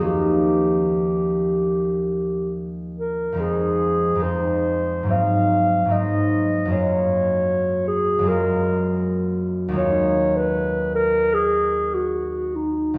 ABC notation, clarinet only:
X:1
M:4/4
L:1/16
Q:1/4=74
K:Ebdor
V:1 name="Clarinet"
=G12 z2 B2 | A4 c4 f4 e4 | d6 A2 B4 z4 | d3 _c3 B2 A3 G3 E2 |]